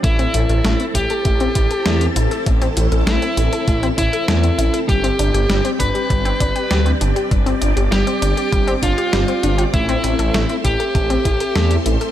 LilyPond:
<<
  \new Staff \with { instrumentName = "String machine" } { \time 4/4 \key a \minor \tempo 4 = 99 << { <a' a''>1~ | <a' a''>1 | g''1 | d'''1 |
c'''1 | } \\ { <c' e'>1~ | <c' e'>1 | <g' d''>1~ | <g' d''>1 |
<a' e''>1 | } >> }
  \new Staff \with { instrumentName = "Lead electric guitar" } { \time 4/4 \key a \minor e'4. g'2 r8 | r4 e'4. e'4. | g'4. b'2 r8 | r4 g'4. f'4. |
e'4. g'2 r8 | }
  \new Staff \with { instrumentName = "Synth arpeggio sound" } { \time 4/4 \key a \minor a16 c'16 e'16 a'16 a16 c'16 e'16 a'16 a16 c'16 e'16 a'16 a16 c'16 e'16 a'16 | a16 c'16 e'16 a'16 a16 c'16 e'16 a'16 a16 c'16 e'16 a'16 a16 c'16 e'16 a'16 | g16 c'16 d'16 g'16 g16 c'16 d'16 g'16 g16 c'16 d'16 g'16 g16 c'16 d'16 g'16 | g16 c'16 d'16 g'16 g16 c'16 d'16 g'16 g16 c'16 d'16 g'16 g16 c'16 d'16 g'16 |
a16 c'16 e'16 a'16 a16 c'16 e'16 a'16 a16 c'16 e'16 a'16 a16 c'16 e'16 a'16 | }
  \new Staff \with { instrumentName = "Detuned saw bass" } { \clef bass \time 4/4 \key a \minor a,,16 r16 a,,16 a,,16 a,,16 r16 a,,16 r16 a,,16 r16 a,,16 r16 e,16 r16 a,,16 r16 | a,,16 r16 a,,16 a,,16 a,,16 r16 a,,16 r16 a,,16 r16 a,,16 r16 e,16 r16 a,,16 r16 | g,,16 r16 g,,16 g,,16 g,,16 r16 g,,16 r16 g,,16 r16 g,,16 r16 d,16 r16 g,,16 r16 | g,,16 r16 g,,16 g,,16 g,,16 r16 g,,16 r16 g,,16 r16 g,,16 r16 g,,16 r16 g,,16 r16 |
a,,16 r16 a,,16 a,,16 a,,16 r16 a,,16 r16 a,,16 r16 a,,16 r16 e,16 r16 a,,16 r16 | }
  \new DrumStaff \with { instrumentName = "Drums" } \drummode { \time 4/4 <hh bd>16 hh16 hh16 hh16 <hh sn>16 hh16 <hh bd>16 hh16 <hh bd>16 hh16 <hh bd>16 hh16 <hh sn>16 hh16 hh16 hh16 | <hh bd>16 hh16 hh16 hh16 <hh sn>16 hh16 hh16 hh16 <hh bd>16 hh16 <hh bd>16 hh16 <hh sn>16 hh16 hh16 hh16 | <hh bd>16 hh16 hh16 hh16 <hh sn>16 hh16 <hh bd>16 hh16 <hh bd>16 hh16 <hh bd>16 hh16 <hh sn>16 hh16 hh16 hh16 | <hh bd>16 hh16 hh16 hh16 <hh sn>16 hh16 hh16 hh16 <hh bd>16 hh16 <hh bd>16 hh16 <hh sn>16 hh16 hh16 hh16 |
<hh bd>16 hh16 hh16 hh16 <hh sn>16 hh16 <hh bd>16 hh16 <hh bd>16 hh16 <hh bd>16 hh16 <hh sn>16 hh16 hh16 hh16 | }
>>